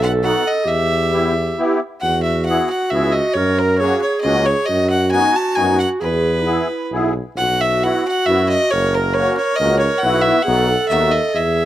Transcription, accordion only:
0.23 B3 D#4 F#4
1.12 B3 E4 G4
1.59 B3 E4 G4
2.49 B3 E4 G#4
2.93 B3 E4 G#4
3.80 A#3 C#4 F#4
4.24 A#3 C#4 F#4
5.13 B3 D#4 F#4
5.57 B3 D#4 F#4
6.46 B3 E4 G#4
6.93 B3 E4 G#4
7.82 B3 E4 F#4
8.28 B3 E4 F#4
9.17 A#3 C#4 F#4
9.61 A#3 C#4 F#4
10.04 B3 E4 F#4
10.46 B3 D#4 F#4
10.90 B3 D#4 F#4

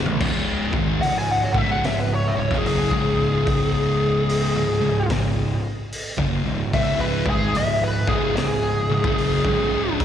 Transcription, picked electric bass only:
0.06 A1
0.21 C#1
0.72 G#1
1.02 C#1
1.55 C#1
1.84 C#1
2.36 C#1
2.51 F#1
2.91 C#1
4.54 C#1
4.82 C#1
5.10 C#1
6.18 F#1
6.44 C#1
6.74 C#1
7.26 G#1
7.55 C#1
8.07 C#1
8.37 C#1
8.90 C#1
9.04 F#1
9.44 C#1

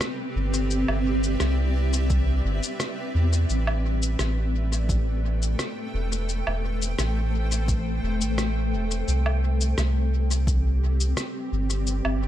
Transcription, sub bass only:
0.36 G1
0.88 G1
1.40 C2
2.45 G1
3.15 E2
3.50 A1
4.19 A1
5.94 E1
6.47 E1
6.99 A1
8.03 E1
8.21 A1
8.73 E1
9.08 C2
9.78 C2
11.52 G1
12.05 G1

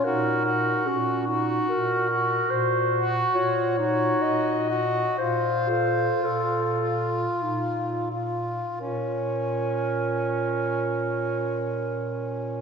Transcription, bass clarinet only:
0.04 A#2
0.86 A#2
1.69 A#2
2.50 A#2
3.34 A#2
4.23 A#2
5.18 A#2
6.23 A#2
7.42 A#2
8.80 A#2

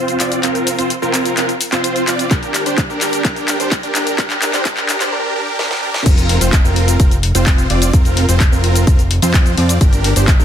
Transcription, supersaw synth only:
Already playing: C4 F4 C5
0.20 C4 F4 D5
0.43 C4 F4 A#4
0.79 C4 F4 C5
1.02 C4 F4 A#4
1.37 C4 F4 A#4
1.72 C4 F4 C5
2.07 C4 F4 D5
2.31 D4 A#4
2.66 D4 G4 C5
2.90 D4 G4 A#4
3.25 D4 G4 A#4
3.60 D4 G4 C5
3.83 D4 G4 A#4
4.19 G4
4.54 D4 G4 C5
5.00 D4 G4 C5
5.12 D4 G4 A#4
5.36 D4 G4 A#4
5.59 D4 G4 A#4
5.83 D4 G4 A#4
6.06 C4 F4 A#4
6.41 C4 F4 C5
6.65 C4 F4 A#4
7.00 C4 A#4
7.35 C4 F4 C5
7.70 C4 F4 D5
7.93 C4 F4 A#4
8.29 C4 F4 C5
8.52 C4 F4 A#4
9.22 C4 F4 C5
9.57 C4 F4 D5
9.81 D4 G4 A#4
10.16 D4 G4 C5
10.40 D4 G4 A#4

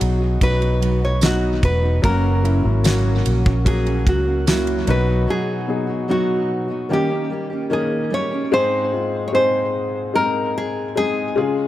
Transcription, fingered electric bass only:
0.02 B1
0.42 B1
1.63 E1
2.04 F#1
2.65 G#1
3.27 A#1
4.07 C#2
4.88 B1

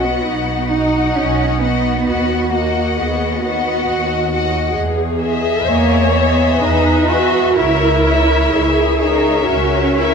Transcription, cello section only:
0.00 B3
0.70 D#4
1.15 C#4
1.60 B3
2.52 A#3
2.99 B3
5.67 A#3
6.13 B3
6.60 D#4
7.08 F#4
7.56 E4
9.01 D#4
9.48 C#4

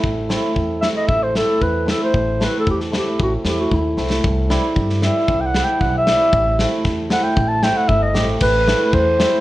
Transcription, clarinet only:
0.81 E5
0.96 D#5
1.07 E5
1.23 C5
1.37 A4
1.62 B4
1.90 A4
2.03 C5
2.44 B4
2.59 A4
2.70 G4
2.97 G4
3.22 F#4
3.47 G4
3.60 F#4
3.74 E4
5.01 E5
5.41 G5
5.46 F#5
5.64 G5
5.80 F#5
5.97 E5
7.12 F#5
7.24 G5
7.48 A5
7.63 G5
7.77 F#5
7.88 E5
8.02 D#5
8.42 B4
8.94 C5

